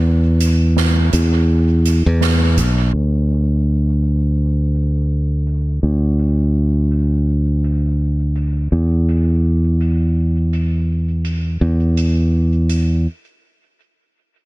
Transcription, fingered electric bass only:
X:1
M:4/4
L:1/16
Q:"Swing 16ths" 1/4=83
K:Ephr
V:1 name="Fingered electric bass" clef=bass
E,,6 E,,4- E,, E,,3 B,,,2 | D,,16 | D,,16 | E,,16 |
E,,8 z8 |]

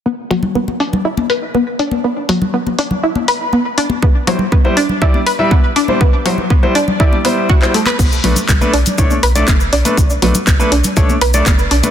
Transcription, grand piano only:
X:1
M:4/4
L:1/16
Q:1/4=121
K:Bm
V:1 name="Grand piano"
z16 | z16 | z2 [G,E=c] z2 [G,Ec] z2 [G,Ed] z2 [G,Ee] z3 [G,Ec] | z2 [G,E=c] z2 [G,Ec] z2 [G,Ed] z [G,Ec]3 [G,Ec] z2 |
z2 [A,DB] z2 [A,DB] z2 [A,Dc] z2 [A,Dd] z3 [A,DB] | z2 [A,DB] z2 [A,DB] z2 [A,Dc] z2 [A,Dd] z3 [A,DB] |]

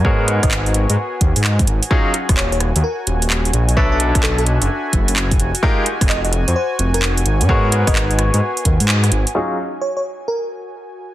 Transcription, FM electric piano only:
X:1
M:4/4
L:1/16
Q:"Swing 16ths" 1/4=129
K:Ebm
V:1 name="FM electric piano"
z3 e3 z8 z2 | z4 d d z2 B2 z6 | =B B z2 =A A z8 z2 | z4 e e z2 =c2 z B2 z3 |
z3 e3 z8 z2 | z4 d d z2 B2 z6 |]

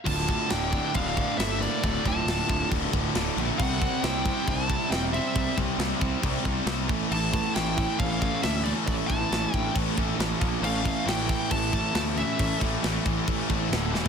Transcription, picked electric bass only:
X:1
M:4/4
L:1/8
Q:1/4=136
K:Dm
V:1 name="Picked electric bass" clef=bass
D,,,2 D,,,2 D,,,2 G,,,2 | D,,, D,,, D,,, D,,, D,,, D,,, D,,, B,,, | C,,2 C,,2 C,,2 E,,,2 | C,, C,, C,, C,, C,, C,, C,, A,,, |
A,,,2 A,,,2 A,,,2 D,,2 | A,,, A,,, A,,, A,,, A,,, A,,, A,,, B,,, | A,,,2 A,,,2 A,,,2 D,,2 | A,,, A,,, A,,, A,,, A,,, A,,, D,,, E,,, |]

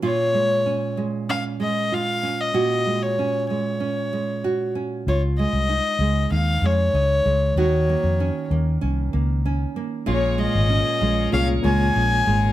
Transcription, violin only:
X:1
M:4/4
L:1/16
Q:1/4=96
K:Db
V:1 name="Violin"
d6 z2 f2 e2 f3 e- | e3 d3 d8 z2 | d2 e6 f2 d6 | d6 z8 z2 |
d2 e6 f2 a6 |]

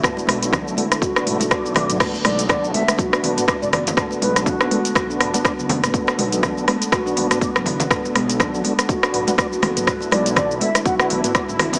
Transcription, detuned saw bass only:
X:1
M:4/4
L:1/16
Q:"Swing 16ths" 1/4=122
K:Bm
V:1 name="Detuned saw bass" clef=bass
z2 B,,,3 B,,, z2 F,,,2 B,,,3 B,,,3 | z2 B,,,3 B,,, z2 B,,,2 B,,, z2 F,,,3 | z2 B,,,3 B,,, z2 B,,,2 B,,, z2 F,,,3 | z2 B,,,3 B,,, z2 B,,,2 B,,, z2 F,,,3 |
z2 B,,,3 B,,, z2 B,,,2 B,,, z2 F,,,3 | z2 B,,,3 B,,, z2 B,,,2 B,,, z2 F,,,3 |]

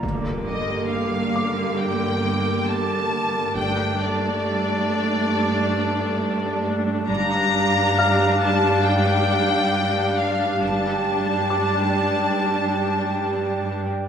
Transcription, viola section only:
X:1
M:4/4
L:1/8
Q:1/4=68
K:Gm
V:1 name="Viola section"
[D,B,]8 | [A,D]8 | [G,D]8 | [G,D]8 |]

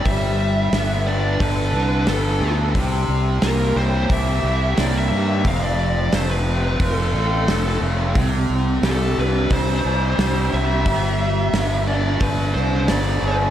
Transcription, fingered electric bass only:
X:1
M:4/4
L:1/8
Q:1/4=89
K:C
V:1 name="Fingered electric bass" clef=bass
G,,,2 G,,,2 G,,, C,, G,,, D,, | C,, C,, C,, C,, C,, C,, C,, G,, | F,,,2 F,,,2 F,,, A,,, F,,, F,,, | C,, C,, C,, C,, C,, C,, C,, C,, |
G,,,2 G,,,2 G,,, C,, G,,, G,,, |]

